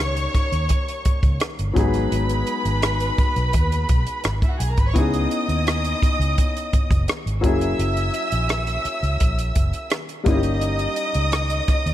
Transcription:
0.00 0.26 C#2 medium
0.00 1.71 G3 medium
0.00 1.72 A#3 medium
0.00 1.72 C#4 medium
0.00 1.73 D#4 medium
0.00 1.74 G4 medium
0.00 1.37 C#5 medium
0.00 1.37 C#6 medium
0.00 cross-stick medium
0.17 closed hi-hat medium
0.34 muted fingered electric bass stroke soft
0.34 kick medium
0.34 cross-stick soft
0.34 closed hi-hat medium
0.52 0.67 D#2 medium
0.52 closed hi-hat soft
0.69 kick medium
0.69 closed hi-hat medium
0.88 closed hi-hat soft
1.05 muted fingered electric bass stroke soft
1.05 kick medium
1.05 closed hi-hat medium
1.23 1.38 C#2 medium
1.23 kick medium
1.23 closed hi-hat soft
1.40 cross-stick loud
1.40 closed hi-hat medium
1.59 1.74 G1 medium
1.59 closed hi-hat soft
1.74 2.06 G#1 medium
1.74 4.55 F#3 medium
1.74 4.55 G#3 medium
1.74 4.56 B3 medium
1.74 4.57 D#4 medium
1.74 4.31 B4 medium
1.74 4.31 B5 medium
1.74 kick medium
1.74 closed hi-hat medium
1.78 4.57 G#4 medium
1.78 cross-stick soft
1.94 closed hi-hat soft
2.12 2.42 G#1 medium
2.12 closed hi-hat medium
2.29 closed hi-hat soft
2.47 closed hi-hat medium
2.65 3.10 G#1 medium
2.65 closed hi-hat soft
2.82 cross-stick medium
2.82 closed hi-hat medium
3.00 closed hi-hat soft
3.18 muted fingered electric bass stroke soft
3.18 kick medium
3.18 closed hi-hat medium
3.36 3.51 B1 medium
3.36 closed hi-hat soft
3.53 3.84 D#2 medium
3.53 kick medium
3.53 closed hi-hat medium
3.72 closed hi-hat soft
3.89 4.04 B1 medium
3.89 kick medium
3.89 closed hi-hat medium
4.07 closed hi-hat soft
4.24 4.40 G#1 medium
4.24 cross-stick loud
4.24 closed hi-hat medium
4.42 4.52 E4 soft
4.42 4.52 E5 medium
4.42 kick medium
4.42 closed hi-hat soft
4.50 4.60 F#4 medium
4.50 4.59 F#5 medium
4.60 4.75 B1 medium
4.60 4.69 G#4 medium
4.60 4.69 G#5 medium
4.60 closed hi-hat medium
4.69 4.78 A#4 medium
4.69 4.78 A#5 medium
4.77 4.93 G#1 medium
4.77 4.88 B4 medium
4.77 4.87 B5 medium
4.77 kick medium
4.77 closed hi-hat soft
4.87 4.96 C#5 medium
4.87 4.96 C#6 medium
4.94 5.25 C#2 medium
4.94 7.39 B3 medium
4.94 7.40 C#4 medium
4.94 7.40 D#4 medium
4.94 7.39 E4 medium
4.94 7.05 D#5 medium
4.94 7.05 D#6 medium
4.94 kick medium
4.94 closed hi-hat medium
4.98 7.41 G#4 medium
5.13 closed hi-hat soft
5.31 closed hi-hat medium
5.48 5.93 D#2 medium
5.48 closed hi-hat soft
5.67 cross-stick medium
5.67 closed hi-hat medium
5.84 closed hi-hat soft
6.02 muted fingered electric bass stroke soft
6.02 kick medium
6.02 closed hi-hat medium
6.19 6.34 C#2 medium
6.19 closed hi-hat soft
6.38 kick medium
6.38 closed hi-hat medium
6.57 closed hi-hat soft
6.73 muted fingered electric bass stroke soft
6.73 kick medium
6.73 closed hi-hat medium
6.90 7.05 F#1 medium
6.90 kick medium
6.90 closed hi-hat soft
7.08 cross-stick loud
7.08 closed hi-hat medium
7.26 7.44 G#1 medium
7.26 closed hi-hat soft
7.41 7.74 F#1 medium
7.41 10.22 F#3 medium
7.41 10.22 A#3 medium
7.41 10.23 C#4 medium
7.41 10.23 E4 medium
7.41 9.87 E5 medium
7.41 9.88 E6 medium
7.41 kick medium
7.41 closed hi-hat medium
7.46 10.24 G#4 medium
7.61 closed hi-hat soft
7.79 8.09 F#1 medium
7.79 closed hi-hat medium
7.97 closed hi-hat soft
8.14 closed hi-hat medium
8.32 8.77 A#1 medium
8.32 closed hi-hat soft
8.49 cross-stick loud
8.49 closed hi-hat medium
8.67 closed hi-hat medium
8.85 muted fingered electric bass stroke soft
8.85 closed hi-hat medium
9.03 9.18 C#2 medium
9.03 closed hi-hat soft
9.20 9.50 A#1 medium
9.20 kick medium
9.20 closed hi-hat medium
9.39 closed hi-hat soft
9.55 9.71 F#1 medium
9.55 kick medium
9.55 closed hi-hat medium
9.73 closed hi-hat soft
9.90 cross-stick loud
9.90 closed hi-hat medium
10.09 closed hi-hat soft
10.23 10.86 G1 medium
10.23 11.94 G3 medium
10.23 11.94 A#3 medium
10.23 11.94 C#4 medium
10.23 11.94 D#5 medium
10.23 kick loud
10.23 cross-stick soft
10.23 closed hi-hat medium
10.28 11.94 D#4 medium
10.28 10.34 E4 medium
10.28 11.94 D#6 medium
10.35 11.94 G4 medium
10.43 closed hi-hat soft
10.61 closed hi-hat medium
10.79 closed hi-hat soft
10.96 closed hi-hat medium
11.14 11.60 C#2 medium
11.14 closed hi-hat soft
11.32 cross-stick loud
11.32 closed hi-hat medium
11.50 closed hi-hat medium
11.68 muted fingered electric bass stroke soft
11.68 kick medium
11.68 cross-stick soft
11.68 closed hi-hat medium
11.86 11.94 D#2 medium
11.86 closed hi-hat soft

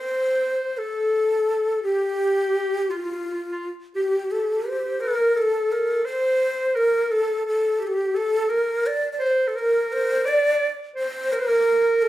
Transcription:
0.00 0.79 C5 medium
0.00 0.80 C5 medium
0.77 1.83 A4 medium
0.77 1.49 A4 medium
1.49 1.87 A4 medium
1.84 2.92 G4 medium
1.84 2.90 G4 medium
2.90 2.97 F4 medium
2.90 3.69 F4 medium
2.98 3.05 F4 soft
3.05 3.12 F4 medium
3.12 3.18 F4 medium
3.19 3.26 F4 medium
3.27 3.33 F4 soft
3.34 3.41 F4 medium
3.50 3.67 F4 medium
3.96 4.02 G4 medium
3.96 4.33 G4 medium
4.03 4.09 G4 soft
4.10 4.17 G4 medium
4.18 4.24 G4 soft
4.25 4.32 G4 medium
4.31 4.40 G4 soft
4.31 4.70 A4 medium
4.41 4.47 G4 soft
4.48 4.55 G4 soft
4.55 4.62 G4 soft
4.63 4.70 G4 soft
4.68 4.78 G4 medium
4.68 5.02 C5 medium
4.79 4.84 G4 soft
4.85 5.02 G4 medium
5.00 5.09 A#4 medium
5.00 5.37 A#4 medium
5.07 5.17 A4 medium
5.15 5.37 A#4 medium
5.36 6.07 A4 medium
5.36 5.43 A#4 medium
5.42 5.74 A4 medium
5.72 6.05 A#4 medium
6.05 6.77 C5 medium
6.05 6.78 C5 loud
6.76 7.12 A#4 medium
6.76 7.13 A#4 medium
7.11 7.45 A4 medium
7.11 7.46 A4 medium
7.45 7.81 A4 medium
7.45 7.83 A4 medium
7.79 7.89 G4 medium
7.79 7.88 A4 medium
7.87 8.18 G4 medium
7.87 7.95 A4 medium
7.94 8.16 G4 medium
8.15 8.50 A4 medium
8.15 8.52 A4 medium
8.49 8.93 A#4 medium
8.49 8.88 A#4 medium
8.87 9.12 D5 medium
9.12 9.23 D5 medium
9.19 9.49 C5 medium
9.19 9.28 C#5 medium
9.27 9.49 C5 medium
9.48 9.57 A4 medium
9.48 9.60 C5 medium
9.55 10.27 A#4 medium
9.55 9.94 A#4 medium
9.93 10.29 C5 medium
10.25 10.69 D5 medium
10.25 10.70 D5 medium
10.95 11.34 C5 medium
10.95 11.35 C5 medium
11.32 11.41 A#4 medium
11.32 12.03 A#4 medium
11.40 11.49 C5 medium
11.47 12.09 A#4 medium
12.02 12.09 A4 medium

